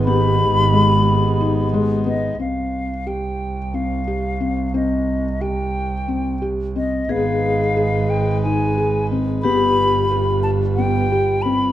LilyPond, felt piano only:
\new Staff \with { instrumentName = "Felt piano" } { \time 7/8 \key c \minor \tempo 4 = 90 ces'4 aes4 ees'8 aes8 ces'8 | c'4 g'4 c'8 g'8 c'8 | c'4 g'4 c'8 g'8 c'8 | ces'4 aes'4 ees'8 aes'8 c'8 |
b4 g'4 b8 g'8 c'8 | }